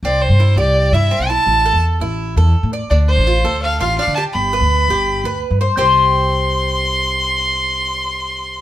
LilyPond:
<<
  \new Staff \with { instrumentName = "Violin" } { \time 4/4 \key c \major \tempo 4 = 167 d''8 c''4 d''4 e''4 a''8~ | a''4 r2. | d''8 c''4. f''8 f''8 f''8 a''8 | b''2. r4 |
c'''1~ | c'''1 | }
  \new Staff \with { instrumentName = "Cuban tres" } { \time 4/4 \key c \major c'4 e'8 g'4 e'8 c'8 e'8~ | e'8 a'4 e'4 a'4 d''8 | d'4 f'8 a'4 f'8 d'8 g'8~ | g'8 b'4 g'4 b'4 c''8 |
<c' g' c''>1~ | <c' g' c''>1 | }
  \new Staff \with { instrumentName = "Upright bass" } { \clef bass \time 4/4 \key c \major c,8. g,8. c,4 g,8 r16 b,,8 r16 | a,,8. e,8. a,,4 e,8 r16 a,8 r16 | d,8. a,,8. d,4 a,,8 r16 d8 r16 | g,,8. d,8. g,,4 d,8 r16 g,8 r16 |
c,1~ | c,1 | }
>>